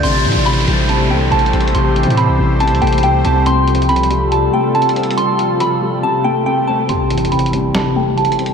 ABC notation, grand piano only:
X:1
M:4/4
L:1/8
Q:1/4=140
K:Am
V:1 name="Grand piano" clef=bass
C, E, C, G, C, A, C, C | C, E, C, G, C, A, C, C | C, F, C, G, C, A, C, C | C, F, C, G, C, A, C, C |
C, E, C, G, C, A, C, C |]